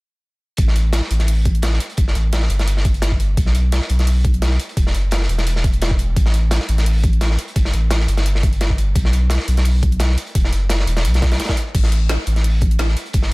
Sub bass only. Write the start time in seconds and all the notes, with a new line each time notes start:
0.58 A1
1.11 A1
1.98 G1
2.15 A1
2.50 G1
3.37 B1
3.90 B1
4.77 E1
4.94 F#1
5.29 E1
6.16 A1
6.69 A1
7.56 G1
7.73 A1
8.08 G1
8.96 B1
9.48 B1
10.35 E1
10.53 F#1
10.87 E1
11.05 B1
11.75 A1
12.27 A1
13.14 G1